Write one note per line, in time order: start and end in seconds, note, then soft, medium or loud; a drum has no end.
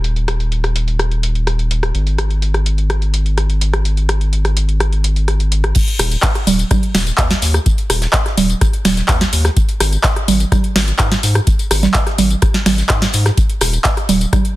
0.00 1.92 D#1 medium
0.04 closed hi-hat medium
0.16 closed hi-hat soft
0.28 cross-stick medium
0.28 closed hi-hat medium
0.40 closed hi-hat soft
0.52 closed hi-hat medium
0.64 cross-stick soft
0.64 closed hi-hat soft
0.76 closed hi-hat loud
0.88 closed hi-hat soft
0.99 cross-stick medium
0.99 closed hi-hat medium
1.11 closed hi-hat soft
1.23 closed hi-hat medium
1.35 closed hi-hat soft
1.47 cross-stick soft
1.47 closed hi-hat medium
1.59 closed hi-hat soft
1.71 closed hi-hat medium
1.83 cross-stick medium
1.83 closed hi-hat soft
1.95 5.73 G#1 medium
1.95 closed hi-hat medium
2.07 closed hi-hat soft
2.18 cross-stick medium
2.18 closed hi-hat medium
2.31 closed hi-hat soft
2.42 closed hi-hat medium
2.54 cross-stick soft
2.54 closed hi-hat soft
2.66 closed hi-hat medium
2.78 closed hi-hat soft
2.90 cross-stick medium
2.90 closed hi-hat medium
3.02 closed hi-hat soft
3.14 closed hi-hat medium
3.26 closed hi-hat soft
3.38 cross-stick soft
3.38 closed hi-hat medium
3.50 closed hi-hat soft
3.61 closed hi-hat medium
3.73 cross-stick medium
3.73 closed hi-hat soft
3.85 closed hi-hat medium
3.97 closed hi-hat soft
4.09 cross-stick medium
4.09 closed hi-hat medium
4.21 closed hi-hat soft
4.33 closed hi-hat medium
4.45 cross-stick soft
4.45 closed hi-hat soft
4.57 closed hi-hat medium
4.69 closed hi-hat soft
4.80 cross-stick medium
4.80 closed hi-hat medium
4.93 closed hi-hat soft
5.04 closed hi-hat medium
5.16 closed hi-hat soft
5.28 cross-stick soft
5.28 closed hi-hat medium
5.40 closed hi-hat soft
5.52 closed hi-hat medium
5.64 cross-stick medium
5.64 closed hi-hat soft
5.75 kick loud
5.75 closed hi-hat medium
5.75 crash loud
5.75 tambourine soft
5.88 closed hi-hat soft
5.99 6.16 D#1 loud
5.99 cross-stick medium
5.99 closed hi-hat medium
5.99 open hi-hat loud
5.99 tambourine medium
6.11 closed hi-hat soft
6.11 tambourine soft
6.23 kick loud
6.23 snare loud
6.23 clap loud
6.23 closed hi-hat medium
6.23 tambourine soft
6.35 cross-stick soft
6.35 closed hi-hat soft
6.47 6.64 D#1 loud
6.47 closed hi-hat medium
6.47 open hi-hat loud
6.47 tambourine medium
6.47 low conga loud
6.59 closed hi-hat soft
6.59 tambourine soft
6.71 kick loud
6.71 cross-stick medium
6.71 closed hi-hat medium
6.71 tambourine soft
6.71 low conga medium
6.83 closed hi-hat soft
6.94 7.11 D#1 loud
6.94 snare medium
6.94 closed hi-hat medium
6.94 open hi-hat loud
6.94 tambourine medium
7.07 closed hi-hat soft
7.07 tambourine soft
7.18 7.35 D#2 medium
7.18 kick loud
7.18 cross-stick soft
7.18 snare loud
7.18 clap loud
7.18 closed hi-hat medium
7.18 tambourine soft
7.30 snare medium
7.30 closed hi-hat soft
7.30 tambourine soft
7.42 7.59 D#2 medium
7.42 snare soft
7.42 closed hi-hat medium
7.42 open hi-hat loud
7.42 tambourine medium
7.54 cross-stick medium
7.54 closed hi-hat soft
7.54 tambourine soft
7.66 kick loud
7.66 closed hi-hat medium
7.66 tambourine soft
7.78 closed hi-hat soft
7.90 8.07 D#1 loud
7.90 cross-stick medium
7.90 closed hi-hat medium
7.90 open hi-hat loud
7.90 tambourine medium
8.02 snare medium
8.02 closed hi-hat soft
8.02 tambourine soft
8.13 kick loud
8.13 snare loud
8.13 clap loud
8.13 closed hi-hat medium
8.13 tambourine soft
8.26 cross-stick soft
8.26 snare soft
8.26 closed hi-hat soft
8.37 8.54 D#1 loud
8.37 closed hi-hat medium
8.37 open hi-hat loud
8.37 tambourine medium
8.37 low conga loud
8.50 closed hi-hat soft
8.50 tambourine soft
8.61 kick loud
8.61 cross-stick medium
8.61 closed hi-hat medium
8.61 tambourine soft
8.73 closed hi-hat soft
8.85 9.02 D#1 medium
8.85 snare medium
8.85 closed hi-hat medium
8.85 open hi-hat loud
8.85 tambourine medium
8.85 low conga loud
8.97 snare soft
8.97 closed hi-hat soft
8.97 tambourine soft
9.08 9.26 D#2 medium
9.08 kick loud
9.08 cross-stick soft
9.08 snare loud
9.08 clap loud
9.08 closed hi-hat medium
9.08 tambourine soft
9.21 snare medium
9.21 closed hi-hat soft
9.21 tambourine soft
9.33 9.50 D#2 medium
9.33 closed hi-hat medium
9.33 open hi-hat loud
9.33 tambourine medium
9.45 cross-stick medium
9.45 snare soft
9.45 closed hi-hat soft
9.45 tambourine soft
9.57 kick loud
9.57 closed hi-hat medium
9.57 closed hi-hat loud
9.57 tambourine soft
9.69 closed hi-hat soft
9.80 9.97 G#1 loud
9.80 cross-stick medium
9.80 closed hi-hat medium
9.80 open hi-hat loud
9.80 tambourine medium
9.92 closed hi-hat soft
9.92 tambourine soft
10.04 kick loud
10.04 snare loud
10.04 clap loud
10.04 closed hi-hat medium
10.04 tambourine soft
10.16 cross-stick soft
10.16 closed hi-hat soft
10.28 10.45 G#1 loud
10.28 closed hi-hat medium
10.28 open hi-hat loud
10.28 tambourine medium
10.28 low conga loud
10.40 closed hi-hat soft
10.40 tambourine soft
10.52 kick loud
10.52 cross-stick medium
10.52 closed hi-hat medium
10.52 tambourine soft
10.52 low conga medium
10.64 closed hi-hat soft
10.76 10.92 G#1 loud
10.76 snare medium
10.76 closed hi-hat medium
10.76 open hi-hat loud
10.76 tambourine medium
10.88 closed hi-hat soft
10.88 tambourine soft
10.99 11.16 G#2 medium
10.99 kick loud
10.99 cross-stick soft
10.99 snare loud
10.99 clap loud
10.99 closed hi-hat medium
10.99 tambourine soft
11.11 snare medium
11.11 closed hi-hat soft
11.11 tambourine soft
11.23 11.40 G#2 medium
11.23 snare soft
11.23 closed hi-hat medium
11.23 open hi-hat loud
11.23 tambourine medium
11.35 cross-stick medium
11.35 closed hi-hat soft
11.35 tambourine soft
11.47 kick loud
11.47 closed hi-hat medium
11.47 tambourine soft
11.59 closed hi-hat soft
11.59 tambourine soft
11.71 11.88 G#1 loud
11.71 cross-stick medium
11.71 closed hi-hat medium
11.71 open hi-hat loud
11.71 tambourine medium
11.83 snare medium
11.83 closed hi-hat soft
11.83 tambourine soft
11.83 low conga medium
11.94 kick loud
11.94 snare loud
11.94 clap loud
11.94 closed hi-hat medium
11.94 tambourine soft
12.06 cross-stick soft
12.06 snare soft
12.06 closed hi-hat soft
12.18 12.35 G#1 loud
12.18 closed hi-hat medium
12.18 open hi-hat loud
12.18 tambourine medium
12.18 low conga loud
12.30 closed hi-hat soft
12.30 tambourine soft
12.42 kick loud
12.42 cross-stick medium
12.42 closed hi-hat loud
12.42 closed hi-hat medium
12.42 tambourine soft
12.54 snare soft
12.54 closed hi-hat soft
12.66 12.83 G#1 loud
12.66 snare medium
12.66 closed hi-hat medium
12.66 open hi-hat loud
12.66 tambourine medium
12.66 low conga medium
12.78 snare soft
12.78 closed hi-hat soft
12.78 tambourine soft
12.89 13.07 G#2 medium
12.89 kick loud
12.89 cross-stick soft
12.89 snare loud
12.89 clap loud
12.89 closed hi-hat medium
12.89 tambourine soft
13.02 snare medium
13.02 closed hi-hat soft
13.02 tambourine soft
13.13 13.31 G#2 medium
13.13 closed hi-hat medium
13.13 open hi-hat loud
13.13 tambourine medium
13.25 cross-stick medium
13.25 snare soft
13.25 closed hi-hat soft
13.25 tambourine soft
13.37 kick loud
13.37 closed hi-hat medium
13.37 tambourine soft
13.50 closed hi-hat soft
13.61 13.78 D#1 loud
13.61 cross-stick medium
13.61 closed hi-hat medium
13.61 open hi-hat loud
13.61 tambourine medium
13.73 closed hi-hat soft
13.73 tambourine soft
13.84 kick loud
13.84 snare loud
13.84 clap loud
13.84 closed hi-hat medium
13.84 tambourine soft
13.97 cross-stick soft
13.97 closed hi-hat soft
14.09 14.26 D#1 loud
14.09 closed hi-hat medium
14.09 open hi-hat loud
14.09 tambourine medium
14.09 low conga loud
14.21 closed hi-hat soft
14.21 tambourine soft
14.33 kick loud
14.33 cross-stick medium
14.33 closed hi-hat medium
14.33 closed hi-hat loud
14.33 tambourine soft
14.33 low conga medium
14.45 closed hi-hat soft